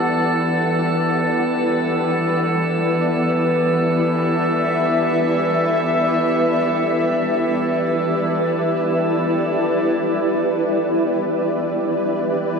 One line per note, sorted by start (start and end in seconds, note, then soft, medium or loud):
0.00 9.56 E3 medium
0.00 9.56 B3 medium
0.00 12.60 E4 medium
0.00 12.60 G4 medium
0.00 9.58 A4 medium
0.00 12.60 B4 medium
0.00 12.60 D5 medium
0.00 3.22 F#5 medium
0.00 9.59 A5 medium
2.91 12.11 E5 medium
9.57 12.60 E3 medium
9.57 12.60 B3 medium